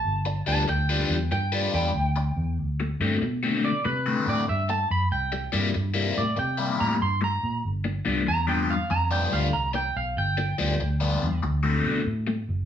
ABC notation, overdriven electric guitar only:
X:1
M:4/4
L:1/16
Q:"Swing" 1/4=95
K:Gmix
V:1 name="Overdriven electric guitar"
z2 [G,DFB] z2 [G,DFB] z3 [G,DFB] [G,DFB] z4 z | z2 [D,A,C^F] z2 [D,A,CF] z3 [D,A,CF] [D,A,CF] z4 z | z2 [C,G,_B,E] z2 [C,G,B,E] z3 [C,G,B,E] [C,G,B,E] z4 z | z2 [G,,F,B,D] z2 [G,,F,B,D] z3 [G,,F,B,D] [G,,F,B,D] z4 z |
z2 [G,,F,B,D] z2 [G,,F,B,D] z3 [D,A,C^F] [D,A,CF] z4 z |]